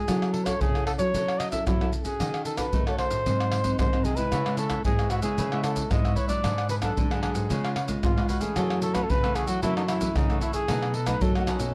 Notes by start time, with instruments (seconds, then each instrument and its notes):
Already playing: flugelhorn G#4
0.08 nylon-string guitar F#3 C#4 E4 A4, pandeiro, tamborim, maracas, surdo
0.22 pandeiro, tamborim, maracas
0.33 flugelhorn A4, pandeiro
0.45 nylon-string guitar C#4 E4 A4, flugelhorn C#5, pandeiro, tamborim, maracas, surdo
0.61 nylon-string guitar C#3, flugelhorn G#4, pandeiro, maracas, surdo
0.75 nylon-string guitar C#4 E4 A4, pandeiro, tamborim, maracas
0.86 flugelhorn A4, pandeiro, tamborim
0.98 nylon-string guitar F#3, flugelhorn C#5, pandeiro, maracas
1.14 nylon-string guitar F#3 C#4 E4 A4, pandeiro, maracas, surdo
1.28 pandeiro, tamborim, maracas
1.39 flugelhorn D#5, pandeiro, tamborim, maracas
1.51 nylon-string guitar C#4 E4 A4, flugelhorn E5, pandeiro, maracas, surdo
1.66 nylon-string guitar C#3 F#3, flugelhorn E4, pandeiro, tamborim, maracas, surdo
1.81 nylon-string guitar C#4 E4 A4, pandeiro, tamborim, maracas, surdo
1.93 pandeiro, maracas
2.04 nylon-string guitar C#4 F#4, flugelhorn G#4, pandeiro, maracas, surdo
2.20 nylon-string guitar D#3, pandeiro, tamborim, maracas, surdo
2.34 pandeiro, tamborim, maracas
2.45 flugelhorn A4, pandeiro, maracas
2.57 nylon-string guitar C#4 F#4 A4, flugelhorn B4, pandeiro, tamborim, maracas, surdo
2.73 nylon-string guitar D#3 A3, pandeiro, maracas, surdo
2.87 nylon-string guitar C#4 F#4 A4, flugelhorn C#5, pandeiro, tamborim, maracas
2.98 flugelhorn C5, pandeiro, tamborim
3.11 nylon-string guitar A2, pandeiro, maracas
3.26 nylon-string guitar G#2 F#3 C4 D#4, pandeiro, maracas, surdo
3.40 pandeiro, tamborim, maracas
3.52 pandeiro, tamborim
3.64 nylon-string guitar F#3 C4 D#4, pandeiro, maracas, surdo
3.79 nylon-string guitar G#2 D#3, flugelhorn C5, pandeiro, tamborim, maracas, surdo
3.93 nylon-string guitar F#3 C4 D#4, pandeiro, tamborim, maracas, surdo
4.04 nylon-string guitar C3, flugelhorn G#4, pandeiro, maracas, surdo
4.16 nylon-string guitar G#3 B3 E4, flugelhorn B4, pandeiro, maracas, surdo
4.31 nylon-string guitar C#3, cavaquinho E4 B4 C#5 E5, pandeiro, tamborim, maracas, surdo
4.46 nylon-string guitar G#3 B3 E4, pandeiro, tamborim, maracas
4.57 cavaquinho E4 B4 C#5 E5, flugelhorn A4, pandeiro, maracas
4.69 cavaquinho E4 B4 C#5 E5, pandeiro, tamborim, maracas, surdo
4.85 nylon-string guitar G#2 G#3 B3 E4, flugelhorn G#4, pandeiro, maracas, surdo
4.99 cavaquinho B4 C#5 E5, pandeiro, tamborim, maracas
5.10 cavaquinho E4 B4 C#5 E5, flugelhorn F#4, pandeiro, tamborim, maracas
5.22 nylon-string guitar C#3 G#3 B3 E4, flugelhorn G#4, cavaquinho B4 C#5 E5, pandeiro, maracas
5.37 nylon-string guitar C#3, cavaquinho E4 B4 C#5 E5, pandeiro, maracas, surdo
5.52 nylon-string guitar G#3 B3 E4, cavaquinho E4 B4 C#5 E5, pandeiro, tamborim, maracas
5.63 cavaquinho E4 B4 C#5 E5, flugelhorn A4, pandeiro, tamborim, maracas
5.76 pandeiro, maracas, surdo
5.91 nylon-string guitar G#2 G#3 B3 E4, flugelhorn D#5, pandeiro, tamborim, maracas, surdo
6.04 cavaquinho B4 C#5 E5, pandeiro, tamborim, maracas, surdo
6.15 cavaquinho E4 B4 C#5 E5, flugelhorn C#5, pandeiro, maracas, surdo
6.28 nylon-string guitar F#3 B3 D4, cavaquinho B4 C#5 E5, flugelhorn D5, pandeiro, maracas, surdo
6.43 nylon-string guitar G#2, cavaquinho D4 G#4 B4 F#5, pandeiro, tamborim, maracas, surdo
6.58 pandeiro, tamborim, maracas
6.69 cavaquinho D4 G#4 B4 F#5, flugelhorn B4, pandeiro, maracas
6.81 nylon-string guitar F#3 B3 D4, cavaquinho D4 G#4 B4 F#5, flugelhorn A4, pandeiro, tamborim, maracas, surdo
6.97 nylon-string guitar G#2 D3, pandeiro, maracas, surdo
7.10 nylon-string guitar F#3 B3 D4, flugelhorn G#4, cavaquinho G#4 B4 F#5, pandeiro, tamborim, maracas
7.22 cavaquinho D4 G#4 B4 F#5, flugelhorn G#4, pandeiro, tamborim
7.34 nylon-string guitar G#2, cavaquinho G#4 B4 F#5, pandeiro, maracas
7.49 nylon-string guitar C#3 G#3 B3 F4, cavaquinho F4 B4 C#5 F5, pandeiro, maracas, surdo
7.64 cavaquinho F4 B4 C#5 F5, pandeiro, tamborim, maracas
7.74 cavaquinho F4 B4 C#5 F5, pandeiro, tamborim
7.88 nylon-string guitar G#3 B3 F4, pandeiro, maracas, surdo
8.03 nylon-string guitar G#2, flugelhorn F4, pandeiro, tamborim, maracas, surdo
8.16 nylon-string guitar G#3 B3 F4, cavaquinho B4 C#5 F5, pandeiro, tamborim, maracas, surdo
8.28 cavaquinho F4 B4 C#5 F5, flugelhorn F#4, pandeiro, maracas, surdo
8.40 nylon-string guitar E3 A3 C#4, flugelhorn G#4, cavaquinho B4 C#5 F5, pandeiro, maracas, surdo
8.56 nylon-string guitar F#2 F#3, cavaquinho F#4 A4 C#5 E5, pandeiro, tamborim, maracas, surdo
8.70 pandeiro, tamborim, maracas
8.81 cavaquinho F#4 A4 C#5 E5, flugelhorn A4, pandeiro, maracas
8.94 nylon-string guitar E3 A3 C#4, cavaquinho F#4 A4 C#5 E5, flugelhorn B4, pandeiro, tamborim, maracas, surdo
9.03 flugelhorn A4
9.10 nylon-string guitar C#3, flugelhorn B4, pandeiro, maracas, surdo
9.23 nylon-string guitar E3 A3 C#4, cavaquinho A4 C#5 E5, pandeiro, tamborim, maracas
9.34 cavaquinho F#4 A4 C#5 E5, flugelhorn G#4, pandeiro, tamborim, maracas
9.46 nylon-string guitar F#3, flugelhorn F#4, cavaquinho A4 C#5 E5, pandeiro, maracas
9.62 nylon-string guitar F#2 E3 F#3 A3 C#4, flugelhorn E4, cavaquinho F#4 A4 C#5 E5, pandeiro, maracas, surdo
9.76 flugelhorn D#4, cavaquinho F#4 A4 C#5 E5, pandeiro, tamborim, maracas
9.87 flugelhorn E4, cavaquinho F#4 A4 C#5 E5, pandeiro, tamborim, maracas
10.00 nylon-string guitar E3 A3 C#4, pandeiro, maracas, surdo
10.16 nylon-string guitar C#3, flugelhorn D#4, pandeiro, tamborim, maracas, surdo
10.29 nylon-string guitar E3 A3 C#4, cavaquinho A4 C#5 E5, pandeiro, tamborim, maracas, surdo
10.40 flugelhorn E4, cavaquinho F#4 A4 C#5 E5, pandeiro, maracas, surdo
10.52 flugelhorn G#4, cavaquinho A4 C#5 E5, pandeiro, maracas, surdo
10.68 nylon-string guitar B2 F#3 A3 D#4, cavaquinho D#4 A4 B4 D#5, pandeiro, tamborim, maracas, surdo
10.82 pandeiro, tamborim, maracas
10.93 cavaquinho D#4 A4 B4 D#5, flugelhorn A4, pandeiro
11.06 nylon-string guitar F#3 A3 D#4, cavaquinho D#4 A4 B4 D#5, flugelhorn B4, pandeiro, tamborim, maracas, surdo
11.21 nylon-string guitar F#2 F#3, flugelhorn A4, pandeiro, maracas, surdo
11.35 nylon-string guitar F#3 A3 D#4, flugelhorn F#4, cavaquinho A4 B4 D#5, pandeiro, tamborim, maracas
11.47 flugelhorn C#4, cavaquinho D#4 A4 B4 D#5, pandeiro, tamborim, maracas
11.59 nylon-string guitar B2, cavaquinho A4 B4 D#5, pandeiro, maracas